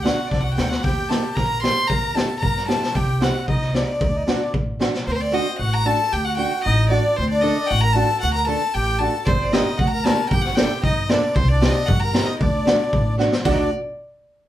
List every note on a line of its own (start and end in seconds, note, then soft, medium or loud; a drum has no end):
0.00 0.10 D2 medium
0.00 0.17 A3 medium
0.00 0.29 F#4 medium
0.00 0.29 F#5 medium
0.05 0.18 D4 medium
0.05 0.18 F#4 medium
0.05 snare medium
0.27 0.43 D4 medium
0.27 0.42 D5 medium
0.31 0.55 C2 medium
0.31 kick medium
0.31 snare soft
0.40 0.67 F#4 medium
0.40 0.54 F#5 medium
0.54 0.82 D2 medium
0.54 0.70 A3 medium
0.54 0.71 D4 medium
0.54 0.71 A4 medium
0.54 0.70 G5 medium
0.54 snare medium
0.68 0.82 F#4 medium
0.68 0.85 F#5 medium
0.68 snare medium
0.83 1.16 D#2 medium
0.83 1.38 G4 medium
0.83 1.10 G5 loud
0.83 kick medium
0.83 snare soft
1.09 1.23 A#3 medium
1.09 1.24 D#4 medium
1.09 1.24 G4 medium
1.09 1.37 A5 medium
1.09 snare medium
1.35 1.69 A#1 medium
1.35 1.64 A#4 medium
1.35 1.62 A#5 loud
1.35 kick medium
1.35 snare soft
1.63 1.76 A#3 medium
1.63 1.77 D#4 medium
1.63 1.77 G4 medium
1.63 1.91 C5 medium
1.63 1.89 C6 loud
1.63 snare medium
1.87 2.22 D#2 medium
1.87 2.15 A#4 loud
1.87 2.16 A#5 loud
1.87 kick medium
2.14 2.29 A#3 medium
2.14 2.29 D#4 medium
2.14 2.29 G4 medium
2.14 2.44 A4 medium
2.14 2.40 A5 medium
2.14 snare medium
2.40 2.74 G2 medium
2.40 2.68 A#4 medium
2.40 2.66 A#5 loud
2.40 kick medium
2.56 snare soft
2.67 2.81 A#3 medium
2.67 2.82 D#4 medium
2.67 2.82 G4 medium
2.67 2.97 A4 medium
2.67 2.98 A5 loud
2.67 snare medium
2.83 snare medium
2.95 3.27 C2 medium
2.95 3.22 G4 medium
2.95 3.24 G5 medium
2.95 kick medium
2.95 snare soft
3.21 3.34 C4 medium
3.21 3.35 D#4 medium
3.21 3.46 F#4 medium
3.21 3.35 G4 medium
3.21 3.48 F#5 medium
3.21 snare medium
3.48 3.80 C2 medium
3.48 3.73 D#4 medium
3.48 3.76 D#5 medium
3.48 kick medium
3.61 snare soft
3.73 3.87 C4 medium
3.73 3.83 D4 medium
3.73 3.88 D#4 medium
3.73 3.88 G4 medium
3.73 4.54 D5 medium
3.73 snare medium
3.83 3.91 D#4 medium
3.92 4.00 D4 soft
3.99 4.33 D2 medium
3.99 4.07 D#4 soft
3.99 kick loud
4.09 4.16 D4 medium
4.15 4.23 D#4 medium
4.25 4.40 A3 medium
4.25 4.53 D4 medium
4.25 4.41 D4 medium
4.25 4.41 F#4 medium
4.25 snare medium
4.54 4.86 A1 medium
4.54 kick medium
4.79 4.93 A3 medium
4.79 4.93 D4 medium
4.79 4.94 F#4 medium
4.79 snare medium
4.94 snare medium
5.07 5.39 D2 loud
5.07 5.11 C4 medium
5.07 5.13 C5 medium
5.11 5.60 C4 medium
5.11 5.17 A#4 medium
5.11 5.22 C5 medium
5.21 5.35 D5 loud
5.32 5.46 A3 medium
5.32 5.46 D4 medium
5.32 5.46 F#4 medium
5.32 5.58 D#5 loud
5.59 5.91 A1 loud
5.59 5.84 F#4 medium
5.59 5.75 F#5 loud
5.74 5.87 A#5 loud
5.85 5.99 A3 medium
5.85 5.99 D4 medium
5.85 5.99 F#4 medium
5.85 6.13 A4 medium
5.85 6.14 A5 loud
6.12 6.44 D2 medium
6.12 6.24 G4 medium
6.12 6.27 G5 loud
6.25 6.66 F#4 medium
6.25 6.37 F#5 loud
6.37 6.51 A3 medium
6.37 6.51 D4 medium
6.37 6.52 F#4 medium
6.37 6.62 G5 loud
6.64 6.97 A1 loud
6.64 6.92 D#4 medium
6.64 6.89 D#5 loud
6.89 7.03 A3 medium
6.89 7.04 D4 medium
6.89 7.16 D4 medium
6.89 7.04 F#4 medium
6.89 7.18 D5 medium
7.16 7.50 D2 loud
7.16 7.30 C4 medium
7.16 7.29 C5 loud
7.30 7.71 D4 medium
7.30 7.42 D5 medium
7.41 7.56 A3 medium
7.41 7.56 D4 medium
7.41 7.57 A4 medium
7.41 7.68 D#5 loud
7.66 7.83 F#4 medium
7.66 7.82 F#5 loud
7.66 7.69 G5 medium
7.71 8.02 A1 loud
7.80 7.95 A#4 medium
7.80 7.94 A#5 loud
7.93 8.08 A3 medium
7.93 8.09 D4 medium
7.93 8.09 F#4 medium
7.93 8.23 A4 medium
7.93 8.21 A5 loud
8.21 8.54 D2 loud
8.21 8.36 F#4 medium
8.21 8.33 F#5 loud
8.34 8.48 A#4 medium
8.34 8.47 A#5 loud
8.47 8.61 A3 medium
8.47 8.61 D4 medium
8.47 8.72 A4 medium
8.47 8.62 A4 medium
8.47 8.75 A5 loud
8.74 9.06 A1 medium
8.74 9.02 G4 medium
8.74 9.00 G5 loud
8.99 9.13 A3 medium
8.99 9.14 D4 medium
8.99 9.14 F#4 medium
8.99 9.29 A4 medium
8.99 9.23 A5 loud
9.25 9.58 G1 medium
9.25 9.52 C4 medium
9.25 9.39 C5 medium
9.25 9.28 D5 medium
9.25 kick medium
9.39 9.54 D5 medium
9.52 9.66 A#3 medium
9.52 9.66 D4 medium
9.52 9.78 D#4 medium
9.52 9.67 G4 medium
9.52 9.79 D#5 medium
9.52 snare loud
9.78 10.10 D2 loud
9.78 9.92 F#4 medium
9.78 9.89 F#5 medium
9.78 kick medium
9.90 10.34 A#4 medium
9.90 10.05 A#5 medium
10.04 10.18 A#3 medium
10.04 10.19 D4 medium
10.04 10.19 G4 medium
10.04 10.29 A5 loud
10.04 snare medium
10.30 10.63 G1 medium
10.30 10.46 G4 medium
10.30 10.43 G5 loud
10.30 kick medium
10.41 10.57 F#5 medium
10.41 snare soft
10.46 10.58 F#4 medium
10.55 10.70 A#3 medium
10.55 10.71 D4 medium
10.55 10.82 G4 medium
10.55 10.71 A4 medium
10.55 10.83 G5 loud
10.55 snare loud
10.71 snare soft
10.84 11.15 G2 medium
10.84 11.04 D#4 medium
10.84 11.11 D#5 medium
10.84 kick medium
11.05 11.23 A#3 medium
11.05 11.11 D#4 medium
11.05 11.37 D5 medium
11.09 11.23 D4 medium
11.09 11.35 D4 medium
11.09 11.24 A4 medium
11.09 snare medium
11.35 11.67 C2 loud
11.35 11.50 C4 medium
11.35 11.50 C5 medium
11.35 kick medium
11.49 11.91 D4 medium
11.49 11.63 D5 medium
11.61 11.75 C4 medium
11.61 11.75 D#4 medium
11.61 11.76 G4 medium
11.61 11.87 D#5 loud
11.61 snare loud
11.86 12.20 G2 loud
11.86 12.03 F#4 medium
11.86 12.01 F#5 loud
11.86 kick medium
12.00 12.30 A#4 medium
12.00 12.27 A#5 medium
12.13 12.27 C4 medium
12.13 12.28 D#4 medium
12.13 12.28 G4 medium
12.13 snare medium
12.26 12.41 D#4 medium
12.26 12.39 D#5 medium
12.40 12.72 D2 loud
12.40 13.16 D4 medium
12.40 13.15 D5 medium
12.40 kick medium
12.66 12.80 A3 medium
12.66 12.80 D4 medium
12.66 12.81 F#4 medium
12.66 snare loud
12.93 13.25 A1 loud
12.93 kick medium
13.18 13.32 A3 medium
13.18 13.32 D4 medium
13.18 13.32 F#4 medium
13.18 snare soft
13.32 snare medium
13.44 13.70 D2 medium
13.44 13.70 A3 medium
13.44 13.70 D4 medium
13.44 13.52 D4 medium
13.44 13.70 F#4 medium
13.44 13.70 D5 medium
13.44 kick loud
13.44 crash medium
13.50 13.58 D#4 medium
13.57 13.70 D4 medium